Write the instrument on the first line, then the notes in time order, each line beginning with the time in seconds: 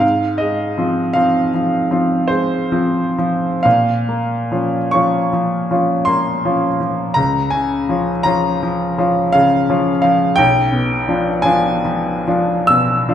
grand piano
Already playing: G#2
0.00 F5
0.38 G#3 D#5
0.78 F3 C4 F4
1.13 F3 C4 F4 F5
1.54 F3
1.91 F3 C4 F4
2.28 G#3 C5
2.72 F3 C4 F4
3.18 F3
3.63 A#2 F5
4.09 A#3
4.51 F3 C#4 F4
4.91 F3 C#4 F4 C#6
5.33 F3
5.71 F3 C#4 F4
6.05 A#3 C6
6.45 F3 C#4 F4
6.80 F3
7.14 C#2 A#5
7.50 C#3 G#5
7.89 F3 C#4 F4
8.23 F3 C#4 F4 A#5
8.63 F3
8.98 F3 C#4 F4
9.33 C#3 F5
9.70 F3 C#4 F4
10.02 F3 F5
10.36 B1 G5
10.72 B2
11.08 F3 D4 F4
11.42 F3 D4 F4 G#5
11.85 F3
12.27 F3 D4 F4
12.67 B2 E6
13.09 F3 D4 F4